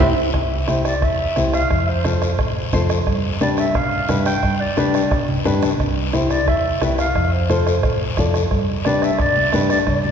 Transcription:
0.00 C2 E4 G4 C5, high conga, high timbale, long guiro
0.34 C2, bombo low, bombo rim, long guiro
0.67 E4 G4 C5, bombo rim, high conga, short guiro
0.85 D5, bombo rim, short guiro
1.02 E2 E5, bombo low, bombo rim, long guiro
1.36 C2 E4 G4 C5, bombo rim, high conga, short guiro
1.53 F5, bombo rim, short guiro
1.70 F2, bombo low, bombo rim, long guiro
1.88 C5
2.05 F4 A4 C5, bombo rim, high conga, short guiro
2.22 bombo rim, short guiro
2.39 A2, bombo low, bombo rim, long guiro
2.72 F2 F4 A4 C5, bombo low, bombo rim, high conga, short guiro
2.89 bombo rim, short guiro
3.06 G2, bombo low, bombo rim, long guiro
3.40 D4 G4 B4 D5, bombo rim, high conga, short guiro
3.57 E5, bombo rim, short guiro
3.74 B2 F5, bombo low, bombo rim, long guiro
4.09 G2 D4 G4 B4, bombo rim, high conga, short guiro
4.25 G5, bombo rim, short guiro
4.42 G2, bombo low, bombo rim, long guiro
4.60 D5
4.77 D4 G4 B4, bombo rim, high conga, short guiro
4.94 bombo rim, short guiro
5.11 B2, bombo low, bombo rim, long guiro
5.29 high conga
5.45 G2 D4 G4 B4, bombo rim, high conga, short guiro
5.62 bombo rim, low conga, short guiro
5.80 C2, bombo low, bombo rim, long guiro
6.13 E4 G4 C5, bombo rim, high conga, short guiro
6.30 D5, bombo rim, short guiro
6.48 E2 E5, bombo low, bombo rim, long guiro
6.81 C2 E4 G4 B4, bombo rim, high conga, short guiro
6.98 F5, bombo rim, short guiro
7.15 F2, bombo low, bombo rim, long guiro
7.32 C5
7.49 F4 A4 C5, bombo rim, high conga, short guiro
7.67 bombo rim, short guiro
7.83 A2, bombo low, bombo rim, long guiro
8.17 F2 F4 A4 D5, bombo low, bombo rim, high conga, short guiro
8.34 bombo rim, short guiro
8.51 G2, bombo low, bombo rim, long guiro
8.85 D4 G4 B4 D5, bombo rim, high conga, short guiro
9.02 E5, bombo rim, short guiro
9.19 B2 D5, bombo low, bombo rim, long guiro
9.37 high conga
9.53 G2 D4 G4 B4, bombo rim, high conga, short guiro
9.70 D5, bombo rim, short guiro
9.87 G2 D5, bombo low, bombo rim, high conga, long guiro
10.04 high conga

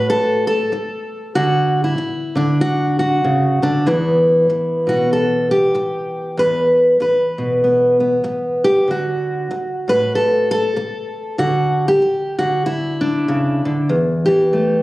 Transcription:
Already playing: A2 F#4
0.10 A4
0.47 A4
0.72 muted steel-string acoustic guitar stroke
1.35 D3 F#4
1.84 E4
1.98 muted steel-string acoustic guitar stroke
2.35 D3 D4
2.61 F#4
2.99 F#4
3.24 C#3
3.62 D3 D4
3.86 E2 E3 B3 E4
4.50 muted steel-string acoustic guitar stroke
4.87 B2 F#4
5.13 A4
5.51 G4
5.75 muted steel-string acoustic guitar stroke
6.37 E2 B4
7.00 B4, muted steel-string acoustic guitar stroke
7.38 B2
7.64 B3
8.00 B3
8.24 muted steel-string acoustic guitar stroke
8.64 G4
8.88 D3 F#4
9.51 muted steel-string acoustic guitar stroke
9.88 A2 B4
10.15 A4
10.51 A4
10.76 muted steel-string acoustic guitar stroke
11.38 D3 F#4
11.88 G4
12.02 muted steel-string acoustic guitar stroke
12.39 D3 F#4
12.66 E4
13.01 D4
13.28 C#3
13.65 D3
13.89 E2
14.26 E3 G4
14.53 A3

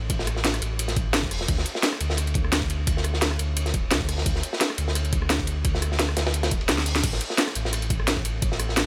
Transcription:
Already playing: A1
0.10 kick, closed hi-hat, ride
0.19 snare
0.27 cross-stick, closed hi-hat, ride
0.36 snare
0.44 snare, closed hi-hat, ride
0.54 cross-stick, closed hi-hat
0.62 A1, closed hi-hat, ride
0.79 closed hi-hat, ride
0.88 snare, closed hi-hat
0.96 kick, closed hi-hat, ride
1.13 G1, snare, closed hi-hat, ride
1.23 kick
1.31 E1, cross-stick, closed hi-hat, open hi-hat
1.41 snare
1.48 D2, kick, closed hi-hat, ride
1.58 snare
1.65 closed hi-hat, ride
1.75 snare
1.83 snare, closed hi-hat, ride
1.93 cross-stick
2.00 D2, closed hi-hat, ride
2.10 snare
2.17 cross-stick, closed hi-hat, ride
2.27 closed hi-hat, ride
2.34 kick, closed hi-hat, ride
2.45 cross-stick
2.52 snare, closed hi-hat, ride
2.62 kick, ride
2.70 closed hi-hat, ride
2.87 kick, closed hi-hat, ride
2.97 snare
3.04 cross-stick, closed hi-hat, ride
3.14 snare
3.22 snare, closed hi-hat, ride
3.31 cross-stick
3.39 D2, closed hi-hat, ride
3.57 closed hi-hat, ride
3.66 snare, closed hi-hat
3.74 D1, kick, closed hi-hat, ride
3.91 D2, snare, closed hi-hat, ride
4.01 kick
4.08 cross-stick, closed hi-hat, open hi-hat
4.18 snare
4.26 D2, kick, closed hi-hat, ride
4.36 snare
4.43 closed hi-hat, ride
4.53 snare
4.61 snare, closed hi-hat, ride
4.70 cross-stick
4.78 D2, closed hi-hat, ride
4.88 snare
4.95 cross-stick, closed hi-hat, ride
5.05 closed hi-hat, ride
5.13 kick, closed hi-hat, ride
5.22 cross-stick
5.30 snare, closed hi-hat, ride
5.39 kick, ride
5.47 closed hi-hat, ride
5.65 kick, closed hi-hat, ride
5.75 snare
5.82 cross-stick, closed hi-hat, ride
5.92 snare
5.99 snare, closed hi-hat, ride
6.09 cross-stick
6.17 D2, snare, closed hi-hat, ride
6.26 snare, ride
6.34 closed hi-hat, ride
6.43 snare, closed hi-hat, ride
6.51 D1, kick, closed hi-hat
6.61 ride
6.69 D2, snare, closed hi-hat, ride
6.78 snare
6.86 closed hi-hat, open hi-hat
6.95 snare, closed hi-hat
7.04 A1, kick, closed hi-hat, crash, ride
7.13 snare
7.21 closed hi-hat, ride
7.30 snare
7.38 snare, closed hi-hat, ride
7.48 cross-stick
7.55 A1, closed hi-hat, ride
7.65 snare
7.73 cross-stick, closed hi-hat, ride
7.82 closed hi-hat, ride
7.90 kick, closed hi-hat, ride
8.00 cross-stick
8.07 snare, closed hi-hat, ride
8.17 kick, ride
8.25 closed hi-hat, ride
8.42 kick, closed hi-hat, ride
8.52 snare
8.60 cross-stick, closed hi-hat, ride
8.69 snare
8.77 snare, closed hi-hat, ride

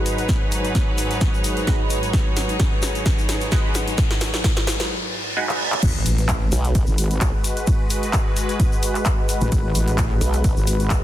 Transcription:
Already playing: G#2 F#3 G#3 D#4 F#4 G#4 B4 C#5 F#5, riser
0.06 open hi-hat, shaker
0.18 closed hi-hat, shaker
0.29 kick, snare, closed hi-hat, shaker
0.52 open hi-hat, shaker
0.64 closed hi-hat, shaker
0.75 kick, snare, closed hi-hat, shaker
0.98 open hi-hat, shaker
1.11 closed hi-hat, shaker
1.21 kick, snare, closed hi-hat, shaker
1.34 shaker
1.44 open hi-hat, shaker
1.57 closed hi-hat, shaker
1.67 G#3 D#4 F#4 B4, kick, snare, closed hi-hat, shaker
1.90 open hi-hat, shaker
2.03 closed hi-hat, shaker
2.13 kick, snare, closed hi-hat, shaker
2.37 snare, open hi-hat, shaker
2.49 closed hi-hat, shaker
2.60 kick, snare, closed hi-hat, shaker
2.82 snare, open hi-hat, shaker
2.95 closed hi-hat, shaker
3.06 kick, snare, closed hi-hat, shaker
3.18 shaker
3.29 snare, open hi-hat, shaker
3.41 closed hi-hat, shaker
3.52 G#3 D#4 F#4 B4, kick, snare, closed hi-hat, shaker
3.75 snare, open hi-hat, shaker
3.88 closed hi-hat, shaker
3.98 kick, snare, closed hi-hat, shaker
4.11 snare
4.21 snare, open hi-hat, shaker
4.34 snare, closed hi-hat, shaker
4.44 kick, snare, closed hi-hat, shaker
4.57 snare
4.67 snare, open hi-hat, shaker
4.80 snare, closed hi-hat, shaker
4.90 reverse cymbal
5.37 G#3 D#4 F#4 B4
5.49 clap
5.72 clap
5.83 G#1 G#3 F#4 B4, kick, closed hi-hat, crash, ride, impact, shaker
6.06 A1, open hi-hat, shaker
6.18 closed hi-hat, shaker
6.29 kick, clap, closed hi-hat, ride, shaker
6.52 B1, open hi-hat, shaker
6.65 closed hi-hat, shaker
6.75 G#1, kick, closed hi-hat, ride, shaker
6.87 G#1, shaker
6.98 open hi-hat, shaker
7.11 closed hi-hat, shaker
7.21 B1, kick, clap, closed hi-hat, ride, shaker
7.44 open hi-hat, shaker
7.57 closed hi-hat, shaker
7.67 kick, closed hi-hat, ride, shaker
7.90 open hi-hat, shaker
8.03 closed hi-hat, shaker
8.13 kick, clap, closed hi-hat, ride, shaker
8.37 open hi-hat, shaker
8.49 closed hi-hat, shaker
8.60 kick, closed hi-hat, ride, shaker
8.72 shaker
8.83 open hi-hat, shaker
8.95 clap, closed hi-hat, shaker
9.05 kick, clap, closed hi-hat, ride, shaker
9.29 open hi-hat, shaker
9.41 A1, closed hi-hat, shaker
9.52 G#1, kick, closed hi-hat, ride, shaker
9.75 A1, open hi-hat, shaker
9.88 closed hi-hat, shaker
9.98 kick, clap, closed hi-hat, ride, shaker
10.21 B1, open hi-hat, shaker
10.33 closed hi-hat, shaker
10.44 G#1, kick, closed hi-hat, ride, shaker
10.57 G#1, shaker
10.67 open hi-hat, shaker
10.80 closed hi-hat, shaker
10.90 B1, kick, clap, closed hi-hat, ride, shaker

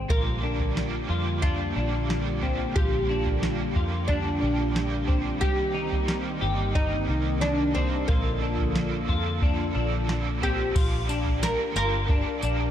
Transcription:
0.09 A#1 A#2 D3 F3 G3 A#3 D4 F4 G4 A#4, kick, floor tom
0.13 G4
0.42 A#3 D4 G4
0.47 F3
0.60 floor tom
0.75 F3 A#3 D4, snare
0.81 G4
1.09 F2 A#3 D4 F4 G4
1.14 F3
1.42 A#2 D3 F3 A#3 D4 F4, kick, floor tom
1.75 A#1 A#3 D4 G4
1.80 F3
2.08 F3 A#3, snare
2.12 D4 G4
2.41 A#3 C4 D4 G4, floor tom
2.46 F3
2.75 A#1 A#2 D3 F4 G4, kick, floor tom
3.08 A#3 D4 G4
3.13 F3
3.26 floor tom
3.42 F3 A#3 D4, snare
3.47 G4
3.75 F2 A#3 D4 F4 G4, kick
3.80 F3
4.08 A#2 D3 F3 A#3 D4 G4, kick, floor tom
4.41 A#1 A#3 D4 G4
4.74 F3 A#3 D4, snare
4.79 G4
5.08 A#3 C4 D4 G4, kick, floor tom
5.13 F3
5.41 C2 C3 D#3 G3 A#3 C4 D#4 G4, kick, floor tom
5.45 G4
5.74 D#4 G4
5.80 A#3
5.92 floor tom
6.08 G3 A#3 D#4, snare
6.13 G4
6.41 G1 D#4 G4
6.46 A#3
6.75 C3 G3 A#3 D#4 G4, kick, floor tom
7.08 C2 D#3 D#4 G4
7.13 A#3
7.41 G3 A#3 D4, snare
7.46 G4
7.74 C4 D4 D#4 G4, floor tom
7.79 A#3
8.08 A#1 A#2 D3 F3 A#3 D4 F4 A4, kick, floor tom
8.41 A#3 D4 A4
8.46 F3
8.58 floor tom
8.74 F3 A#3 D4, snare
8.80 A4
9.08 F2 D4 F4 A4, kick
9.12 F3 A#3
9.42 A#2 D3 F3 A#3 D4 A4, kick, floor tom
9.74 A#1 A#3 D4 A4
9.79 F3
10.08 F3 A#3 D4, snare
10.13 A4
10.41 C4 D4 G4 A4, floor tom
10.45 F3 A#3
10.76 A#1 A#2 D3 F4 G4 F5 A#5 D6, kick, floor tom, crash, tambourine
10.80 G4
11.08 A#3 D4 G4, tambourine
11.13 F3
11.26 floor tom
11.41 A#2 D3 F3 A#3 D4 A#4, snare, tambourine
11.45 G4
11.74 G1 A#3 D4 F4 G4 A#4, tambourine
11.80 F3
12.07 F3 A#3 D4, kick, floor tom
12.13 G4
12.41 A#1 A#3 D4 G4, tambourine
12.46 F3

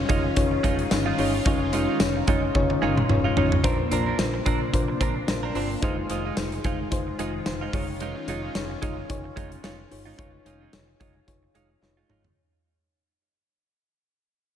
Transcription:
Already playing: D#3 C#4 D#4 F4 G#4 C#5
0.09 F1 G#3 C#4 D#4 F4 G#4 C#5, kick, closed hi-hat
0.24 muted clean electric guitar stroke
0.36 F1 C#4 D#4 F4 G#4 C#5, kick, closed hi-hat, cowbell
0.51 muted clean electric guitar stroke
0.63 F1 G#3 C#4 D#4 F4 G#4 C#5, kick, closed hi-hat, cowbell
0.79 muted clean electric guitar stroke, closed hi-hat
0.91 G1 C#4 D#4 F4 G#4 C#5, muted clean electric guitar stroke, snare, closed hi-hat, tambourine, cowbell
1.06 G#3 D#4 F4
1.18 G1 G#3 C#4 D#4 F4 G#4 C#5, open hi-hat
1.34 muted clean electric guitar stroke
1.45 F1 G#3 C#4 D#4 F4 G#4 C#5, kick, closed hi-hat, cowbell
1.61 muted clean electric guitar stroke
1.73 G#3 C#4 D#4 F4 G#4 C#5, closed hi-hat, cowbell
1.88 G#3 D#4 F4
2.00 F1 C#4 D#4 F4 G#4 C#5, snare, closed hi-hat, tambourine, cowbell
2.16 muted clean electric guitar stroke
2.27 F1 G#3 C#4 D#4 F4 G#4 C#5, kick, closed hi-hat
2.43 muted clean electric guitar stroke
2.55 F1 C#4 D#4 F4 G#4 C#5, kick, high tom, cowbell
2.70 muted clean electric guitar stroke, high tom
2.82 G1 G#3 C#4 D#4 F4 G#4 C#5, cowbell
2.97 muted clean electric guitar stroke, mid tom
3.09 F1 C#4 D#4 F4 G#4 C#5, muted clean electric guitar stroke, mid tom, cowbell
3.24 G#3 D#4 F4
3.36 G#1 G#3 C#4 D#4 F4 G#4 C#5, floor tom
3.52 muted clean electric guitar stroke, floor tom
3.63 A#1 C3 A#3 C4 D4 F4 A#4 C5, kick, closed hi-hat, cowbell
3.79 muted clean electric guitar stroke
3.91 A#1 C4 D4 F4 A#4 C5, closed hi-hat
4.06 C4 D4 A#4
4.18 A#1 D4 F4 A#4 C5, muted clean electric guitar stroke, snare, closed hi-hat, tambourine, cowbell
4.34 muted clean electric guitar stroke
4.46 A#1 C4 D4 F4 A#4 C5, kick, closed hi-hat
4.61 muted clean electric guitar stroke
4.73 A#1 D4 F4 A#4 C5, kick, closed hi-hat, cowbell
4.88 muted clean electric guitar stroke
5.00 A#1 C4 D4 F4 A#4 C5, kick, closed hi-hat
5.16 muted clean electric guitar stroke
5.27 A#1 D4 F4 A#4 C5, muted clean electric guitar stroke, snare, closed hi-hat, tambourine, cowbell
5.43 C4 D4 A#4
5.54 G1 C4 D4 F4 A#4 C5, open hi-hat
5.70 muted clean electric guitar stroke
5.82 F1 D#3 G#3 D#4 F4 G#4 C5, kick, closed hi-hat, cowbell
5.98 muted clean electric guitar stroke
6.09 F1 G#3 D#4 F4 G#4 C5, closed hi-hat
6.25 G#3 D#4 F4
6.36 F1 D#4 F4 G#4 C5, snare, closed hi-hat, tambourine, cowbell
6.52 muted clean electric guitar stroke, closed hi-hat
6.64 F1 G#3 D#4 F4 G#4 C5, kick, closed hi-hat
6.80 muted clean electric guitar stroke
6.91 F1 D#4 F4 G#4 C5, kick, closed hi-hat, cowbell
7.07 muted clean electric guitar stroke
7.18 F1 G#3 D#4 F4 G#4 C5, closed hi-hat
7.34 muted clean electric guitar stroke
7.46 F1 D#4 F4 G#4 C5, muted clean electric guitar stroke, snare, closed hi-hat, tambourine, cowbell
7.61 G#3 D#4 F4
7.73 F1 G#3 C#4 D#4 F4 G#4 C#5, kick, open hi-hat
7.89 muted clean electric guitar stroke
8.00 G#3 D#4 F4, closed hi-hat, cowbell
8.16 muted clean electric guitar stroke
8.27 F1 G#3 D#4 F4 G#4 C#5, closed hi-hat
8.43 G#3 D#4 F4
8.55 F1 D#4 F4 G#4 C#5, muted clean electric guitar stroke, snare, closed hi-hat, tambourine, cowbell
8.70 muted clean electric guitar stroke
8.82 F1 G#3 D#4 F4 G#4 C#5, kick, closed hi-hat
8.97 muted clean electric guitar stroke
9.09 F1 D#4 F4 G#4 C#5, kick, closed hi-hat, cowbell
9.24 muted clean electric guitar stroke
9.36 F1 G#3 D#4 F4 G#4 C#5, kick, closed hi-hat
9.51 muted clean electric guitar stroke, closed hi-hat
9.63 F1 G#3 D#4 F4 G#4 C#5, snare, closed hi-hat, tambourine, cowbell
9.79 muted clean electric guitar stroke
9.91 G1 D#4 F4 G#4 C#5, muted clean electric guitar stroke, open hi-hat
10.06 G#3 D#4 F4
10.18 F1 G#3 D#4 F4 G#4 C#5, kick, closed hi-hat, cowbell
10.33 muted clean electric guitar stroke
10.45 F1 G#3 D#4 F4 G#4 C#5, closed hi-hat
10.61 G#3 D#4 F4
10.73 F1 D#4 F4 G#4 C#5, snare, closed hi-hat, tambourine, cowbell
10.88 muted clean electric guitar stroke
11.00 F1 G#3 D#4 F4 G#4 C#5, kick, closed hi-hat
11.15 muted clean electric guitar stroke
11.27 F1 D#4 F4 G#4 C#5, kick, closed hi-hat, cowbell
11.43 muted clean electric guitar stroke
11.54 F1 G#3 D#4 F4 G#4 C#5, closed hi-hat
11.70 muted clean electric guitar stroke
11.82 F1 D#4 F4 G#4 C#5, muted clean electric guitar stroke, snare, cowbell
11.97 G#3 D#4 F4
12.09 G1 G#3 D#4 F4 G#4 C#5, mid tom
12.24 muted clean electric guitar stroke, floor tom

